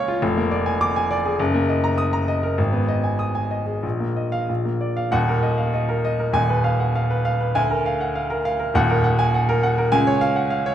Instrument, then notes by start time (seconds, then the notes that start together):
grand piano
Already playing: C#2 A#3 C#5 F5 C#6
0.08 F4
0.22 F1
0.37 A#3
0.51 D5
0.66 G#5
0.81 D6
0.96 G#5
1.11 D5
1.25 G#4
1.39 F#1
1.54 A#3
1.69 D#5
1.84 A#5
1.98 D#6
2.13 A#5
2.28 D#5
2.43 A#4
2.58 G#1
2.73 B3
2.88 D#5
3.04 G#5
3.19 D#6
3.35 G#5
3.51 D#5
3.66 G#4
3.83 A#1
4.00 A#3
4.16 D#5
4.32 F5
4.49 A#1
4.65 A#3
4.81 D5
4.97 F5
5.11 D#1 D#2 F#5
5.28 A#4
5.43 D#5
5.58 F5
5.74 D#5
5.89 A#4
6.05 D#5
6.19 A#4
6.33 D#1 D#2 G#5
6.49 B4
6.64 F5
6.80 F#5
6.95 F5
7.10 B4
7.25 F5
7.40 B4
7.55 D2 G#5
7.70 A#4
7.86 F5
8.01 F#5
8.15 F5
8.30 A#4
8.45 F5
8.59 A#4
8.74 D#1 D#2 F#5
8.90 A#4
9.04 F#5
9.19 G#5
9.34 F#5
9.49 A#4
9.63 F#5
9.78 A#4
9.92 C#2 G#5
10.07 C#5
10.21 F5
10.36 F#5
10.50 F5
10.66 C#5